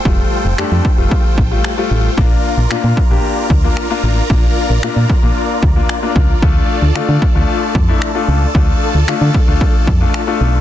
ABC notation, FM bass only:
X:1
M:4/4
L:1/16
Q:1/4=113
K:Bblyd
V:1 name="FM bass" clef=bass
F,,,2 z F,,, F,, F,, z F,,, z2 A,,,2 z2 A,,,2 | B,,,2 z B,,, B,, B,, z B,,, z2 D,,2 z2 A,,,2 | B,,,2 z B,,, B,, B,, z B,,, z2 D,,2 z2 _D,,2 | D,,2 z D,, D, D, z D,, z2 F,,2 z2 _D,,2 |
D,,2 z D,, D, D, z D,, z2 F,,2 z2 =B,,,2 |]